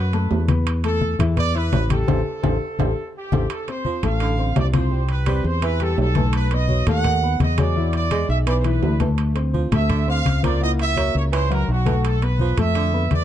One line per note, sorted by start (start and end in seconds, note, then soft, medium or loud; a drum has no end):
0.00 0.27 F#2 medium
0.00 0.45 B4 medium
0.13 0.42 A3 medium
0.13 0.43 A4 medium
0.13 0.43 A5 medium
0.13 high conga soft
0.13 high timbale medium
0.31 1.14 E2 medium
0.31 high conga soft
0.31 low timbale medium
0.48 0.78 B3 medium
0.48 0.78 B4 medium
0.48 0.78 B5 medium
0.48 high conga medium
0.48 high timbale medium
0.66 high conga soft
0.66 high timbale loud
0.84 1.13 A3 medium
0.84 1.13 A4 medium
0.84 1.17 A4 medium
0.84 1.14 A5 medium
0.84 high conga soft
0.84 high timbale medium
1.01 high conga medium
1.19 1.69 E2 medium
1.19 1.34 E3 medium
1.19 1.34 E4 medium
1.19 1.34 E5 medium
1.19 high conga soft
1.19 low conga medium
1.19 high timbale medium
1.36 1.51 B3 medium
1.36 1.52 B4 medium
1.36 1.53 D5 loud
1.36 1.52 B5 medium
1.36 high conga soft
1.36 low conga medium
1.36 high timbale medium
1.54 1.84 E4 medium
1.54 1.91 B4 loud
1.54 1.84 E5 medium
1.54 1.84 E6 medium
1.54 high conga soft
1.72 2.06 A1 medium
1.72 high conga medium
1.72 high timbale medium
1.72 low timbale medium
1.90 2.05 G3 medium
1.90 2.05 G4 medium
1.90 3.11 A4 medium
1.90 2.05 G5 medium
1.90 high conga medium
1.90 high timbale medium
2.08 2.22 A1 medium
2.08 2.19 G4 medium
2.08 2.19 A4 medium
2.08 2.19 C5 loud
2.08 high conga loud
2.08 high timbale loud
2.43 2.57 A1 medium
2.43 2.55 G4 medium
2.43 2.55 A4 medium
2.43 2.55 C5 loud
2.43 high conga loud
2.43 high timbale loud
2.79 2.92 A1 medium
2.79 2.91 G4 medium
2.79 2.91 A4 medium
2.79 2.91 C5 medium
2.79 high conga medium
2.79 high timbale loud
3.17 3.49 G4 medium
3.32 3.45 A1 medium
3.32 3.44 G4 loud
3.32 3.44 A4 medium
3.32 3.44 C5 medium
3.32 high conga loud
3.32 high timbale medium
3.50 3.67 A4 medium
3.50 high conga soft
3.50 high timbale medium
3.68 3.97 C4 medium
3.68 3.97 C5 medium
3.68 4.02 C5 medium
3.68 3.97 C6 medium
3.68 high conga soft
3.68 high timbale medium
3.85 4.04 F3 medium
3.85 high conga medium
4.03 4.53 A1 medium
4.03 4.32 A3 medium
4.03 4.33 A4 medium
4.03 4.54 F5 medium
4.03 4.33 A5 medium
4.03 high conga soft
4.03 low conga medium
4.03 high timbale medium
4.20 4.50 D3 medium
4.20 high conga soft
4.20 high timbale medium
4.38 4.68 C4 medium
4.38 4.68 C5 medium
4.38 4.68 C6 medium
4.38 high conga soft
4.56 5.39 C2 medium
4.56 4.66 D5 medium
4.56 high conga medium
4.56 high timbale medium
4.56 low timbale medium
4.73 5.03 F3 medium
4.73 4.88 C4 medium
4.73 4.88 C5 medium
4.73 5.09 C5 medium
4.73 4.89 C6 medium
4.73 high conga medium
4.73 high timbale loud
4.91 5.20 G3 medium
4.91 5.21 G4 medium
4.91 5.21 G5 medium
4.91 high conga soft
5.09 5.44 B4 medium
5.09 high conga soft
5.09 high timbale medium
5.26 5.46 G3 medium
5.26 5.56 C4 medium
5.26 5.57 C5 medium
5.26 5.57 C6 medium
5.26 high conga medium
5.26 high timbale medium
5.44 5.94 E2 loud
5.44 5.64 C5 medium
5.44 high conga soft
5.62 5.92 E3 medium
5.62 5.77 E4 medium
5.62 5.81 B4 loud
5.62 5.77 E5 medium
5.62 5.78 E6 medium
5.62 high conga soft
5.62 high timbale medium
5.80 6.10 G3 medium
5.80 6.10 G4 medium
5.80 5.99 A4 medium
5.80 6.10 G5 medium
5.80 high conga soft
5.80 high timbale medium
5.98 6.81 B1 medium
5.98 6.32 A4 medium
5.98 high conga soft
5.98 low timbale medium
6.15 6.25 E3 medium
6.15 6.46 A3 medium
6.15 6.46 A4 medium
6.15 6.46 A5 medium
6.15 high conga medium
6.15 high timbale medium
6.33 6.51 B4 loud
6.33 high conga soft
6.33 high timbale loud
6.51 6.81 B3 medium
6.51 6.81 B4 medium
6.51 6.88 D#5 loud
6.51 6.81 B5 medium
6.51 high conga soft
6.51 high timbale medium
6.68 6.87 F#3 medium
6.68 high conga medium
6.87 7.36 D#2 loud
6.87 7.16 A3 medium
6.87 7.17 A4 medium
6.87 7.37 F#5 loud
6.87 7.17 A5 medium
6.87 high conga soft
6.87 low conga medium
6.87 high timbale medium
7.04 7.34 D#3 medium
7.04 high conga soft
7.04 low conga medium
7.04 high timbale medium
7.23 7.52 B3 medium
7.23 7.52 B4 medium
7.23 7.52 B5 medium
7.23 high conga soft
7.40 8.23 E2 medium
7.40 7.59 D#5 loud
7.40 high conga medium
7.40 high timbale medium
7.57 7.87 F#3 medium
7.57 7.72 G#3 medium
7.57 7.73 G#4 medium
7.57 7.92 D5 medium
7.57 7.73 G#5 medium
7.57 high conga medium
7.57 high timbale medium
7.76 8.05 E3 medium
7.76 8.05 E4 medium
7.76 8.05 E5 medium
7.76 high conga soft
7.93 8.27 D5 medium
7.93 high conga soft
7.93 high timbale medium
8.11 8.30 G#3 medium
8.11 8.41 G#3 medium
8.11 8.41 G#4 medium
8.11 8.41 G#5 medium
8.11 high conga medium
8.11 high timbale medium
8.29 8.79 B1 medium
8.29 8.37 E5 medium
8.29 high conga soft
8.46 8.76 E3 medium
8.46 8.61 B3 medium
8.46 8.61 B4 medium
8.46 8.53 D5 medium
8.46 8.62 B5 medium
8.46 high conga soft
8.46 high timbale loud
8.58 8.65 C5 medium
8.64 8.94 E3 medium
8.64 8.94 E4 medium
8.64 9.00 B4 medium
8.64 8.94 E5 medium
8.64 high conga soft
8.64 high timbale medium
8.82 9.66 D2 medium
8.82 high conga soft
8.82 low timbale medium
9.00 9.10 E3 medium
9.00 9.29 A3 medium
9.00 9.30 A4 medium
9.00 9.29 A5 medium
9.00 high conga medium
9.00 high timbale medium
9.18 high conga soft
9.18 high timbale medium
9.36 9.65 C4 medium
9.36 9.65 C5 medium
9.36 9.65 C6 medium
9.36 high conga soft
9.36 high timbale medium
9.54 9.72 F3 medium
9.54 high conga medium
9.72 10.21 D2 loud
9.72 10.01 A3 medium
9.72 10.01 A4 medium
9.72 10.06 E5 loud
9.72 10.01 A5 medium
9.72 high conga soft
9.72 low conga medium
9.72 high timbale medium
9.90 10.19 D3 medium
9.90 high conga soft
9.90 low conga medium
9.90 high timbale medium
10.07 10.37 C4 medium
10.07 10.37 C5 medium
10.07 10.41 F5 loud
10.07 10.37 C6 medium
10.07 high conga soft
10.25 11.09 C#2 medium
10.25 high conga medium
10.25 high timbale medium
10.43 10.73 F3 medium
10.43 10.58 A#3 medium
10.43 10.58 A#4 medium
10.43 10.60 D5 medium
10.43 10.58 A#5 medium
10.43 high conga medium
10.43 high timbale medium
10.61 10.90 A#3 medium
10.61 10.91 E4 medium
10.61 10.70 D#5 loud
10.61 10.90 F#5 medium
10.61 high conga soft
10.79 11.13 E5 loud
10.79 high conga soft
10.79 high timbale medium
10.96 11.16 F#3 medium
10.96 11.26 A#3 medium
10.96 11.26 A#4 medium
10.96 11.27 A#5 medium
10.96 high conga medium
10.96 high timbale medium
11.14 11.65 C#2 medium
11.14 11.24 C#5 medium
11.14 high conga soft
11.32 11.62 E3 medium
11.32 11.47 C#4 medium
11.32 11.50 C5 loud
11.32 11.48 C#5 medium
11.32 11.48 C#6 medium
11.32 high conga soft
11.32 high timbale loud
11.50 11.80 F#3 medium
11.50 11.80 F#4 medium
11.50 11.69 A#4 medium
11.50 11.80 F#5 medium
11.50 high conga soft
11.50 high timbale medium
11.68 12.52 B1 medium
11.68 12.02 F#4 medium
11.68 high conga soft
11.85 11.95 E3 medium
11.85 12.15 A3 medium
11.85 12.15 A4 medium
11.85 12.15 A5 medium
11.85 high conga medium
11.85 high timbale medium
12.04 12.22 A4 medium
12.04 high conga soft
12.04 high timbale loud
12.22 12.51 B3 medium
12.22 12.58 B4 medium
12.22 12.52 B4 medium
12.22 12.52 B5 medium
12.22 high conga soft
12.22 high timbale medium
12.39 12.59 F3 medium
12.39 high conga medium
12.58 13.08 F2 medium
12.58 12.87 A3 medium
12.58 12.87 A4 medium
12.58 13.08 E5 loud
12.58 12.87 A5 medium
12.58 high conga soft
12.58 low conga medium
12.58 high timbale medium
12.75 13.05 D3 medium
12.75 high conga soft
12.75 high timbale medium
12.93 13.23 B3 medium
12.93 13.23 B4 medium
12.93 13.23 B5 medium
12.93 high conga soft
13.11 13.24 E2 medium
13.11 13.24 D5 loud
13.11 high conga medium
13.11 high timbale medium